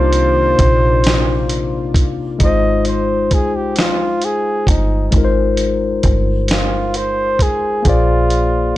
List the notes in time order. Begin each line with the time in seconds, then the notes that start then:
Already playing: C2 C3 D#3 A#3 D4 D#4 F4 C5 D5
0.13 closed hi-hat
0.59 A#1, kick, closed hi-hat
1.04 snare, closed hi-hat
1.49 closed hi-hat
1.94 kick, closed hi-hat
2.39 G#1 G#3 D#4, kick, closed hi-hat
2.43 F4 C5 D#5
2.85 C5, closed hi-hat
3.31 C2 G#4, kick, closed hi-hat
3.56 G4
3.76 F4, snare, closed hi-hat
4.22 G#4, closed hi-hat
4.67 G1 D#4, kick, closed hi-hat
5.11 G#1 G#3 D#4, kick, closed hi-hat
5.16 F4 A#4
5.24 C5
5.57 closed hi-hat
6.03 G1, kick, closed hi-hat
6.48 F4, snare, closed hi-hat
6.94 C5, closed hi-hat
7.39 G#4, kick, closed hi-hat
7.82 A#1 A#3 G#4, kick, closed hi-hat
7.87 F4 C5 D5
8.30 closed hi-hat